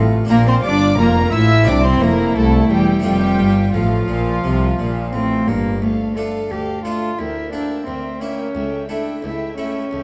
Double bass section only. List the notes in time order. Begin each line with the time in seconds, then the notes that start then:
Already playing: A1
0.31 A#1
0.65 G1
0.99 F1
1.33 A1
1.68 C2
2.02 F1
2.36 C2
2.71 E1
3.05 F1
3.41 G1
3.75 A1
4.10 A#1
4.45 C2
4.79 A#1
5.14 A1
5.48 G1